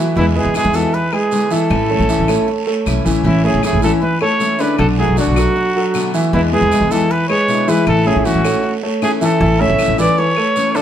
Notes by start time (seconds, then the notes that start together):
Already playing: E3 E4 F#4 E5
0.00 A3 B3
0.16 E2 B2 D3 E3 G#3 B3 E4 E5, long guiro
0.36 G#3 B3 E4 G#4 B4
0.45 E2
0.54 B2 D3 G#3 B3 E4 G#4, short guiro, claves
0.65 E2
0.73 E3 G#3 B3 E4 F#4 A4 E5, short guiro
0.93 G#4 B4, muted steel-string acoustic guitar stroke, long guiro
1.13 G#3 E4 G#4 B4, claves
1.31 B2 D3 G#3 B3 E4, short guiro
1.50 E3 G#3 B3 E4 A4 E5, short guiro
1.69 A1 E3 A3 C#4 E4, long guiro, claves
1.88 A3 C#4 E4 A4 C#5
1.99 A1
2.08 E3 A3 C#4 E4 E5, short guiro
2.19 A1
2.27 A3 C#4 E4 A4 C#5, short guiro, claves
2.47 muted steel-string acoustic guitar stroke, long guiro
2.67 A3 A4 C#5
2.85 B1 E3 A3 C#4 E4, short guiro, claves
3.04 A1 E3 A3 C#4 E4 E5, short guiro
3.24 A1 E3 A3 C#4 E4 E5, long guiro
3.43 A3 C#4 E4 G#4 A4 C#5
3.54 A1
3.63 E3 A3 C#4 E4 G#4, short guiro, claves
3.73 A1
3.82 E3 A3 C#4 E4 F#4 A4 E5, short guiro
4.02 E4 B4, muted steel-string acoustic guitar stroke, long guiro
4.21 A3 A4 C#5, claves
4.39 E3 A3 C#4 E4, short guiro
4.58 D3 A3 C#4 D4 E4 G#4 B4 D5, short guiro
4.78 B1 B2 D3 A3 B3 F#4 A4, long guiro, claves
4.97 F#3 A3 B3 E4 F#4 G#4 A4
5.08 B1
5.16 B2 D3 A3 B3 D4 F#4 D5, short guiro
5.27 B1
5.36 F#3 A3 B3 F#4 A4, short guiro, claves
5.56 muted steel-string acoustic guitar stroke, long guiro
5.76 F#3 F#4 A4
5.94 B2 D3 A3 B3 F#4, short guiro, claves
6.13 E3 A3 B3 E4 F#4 E5, short guiro
6.33 E2 B2 D3 E3 G#3 B3 E4 E5, long guiro
6.52 G#3 B3 E4 G#4 B4
6.61 E2
6.71 B2 D3 G#3 B3 E4, short guiro, claves
6.80 E2
6.91 E3 G#3 B3 E4 F#4 A4 E5, short guiro
7.10 G#4 B4, muted steel-string acoustic guitar stroke, long guiro
7.29 G#3 G#4 B4 C#5, claves
7.47 B2 D3 G#3 B3 E4, short guiro
7.67 E3 G#3 B3 E4 G#4 B4 E5, short guiro
7.86 A1 E3 A3 C#4 E4 A4, long guiro, claves
8.05 A3 C#4 E4 G#4 A4 C#5
8.16 A1 E4 G#4
8.25 E3 A3 C#4 E4 F#4 E5, short guiro
8.35 A1
8.43 A3 C#4 E4 A4 C#5, short guiro, claves
8.63 muted steel-string acoustic guitar stroke, long guiro
8.83 A3 A4 C#5
9.02 E3 A3 C#4 E4 G#4, short guiro, claves
9.21 E3 A3 C#4 E4 A4 E5, short guiro
9.40 A1 E3 A3 C#4 E4 E5, long guiro
9.60 A3 C#4 E4 A4 C#5 E5
9.69 A1
9.79 E3 A3 C#4 E4, short guiro, claves
9.88 A1
9.98 E3 A3 C#4 E4 B4 D5 E5, short guiro
10.17 A4 C#5, muted steel-string acoustic guitar stroke, long guiro
10.36 A3 A4 C#5, claves
10.56 E3 A3 C#4 E4, short guiro
10.74 D3 A3 C#4 D4 E4 F#4 A4 D5, short guiro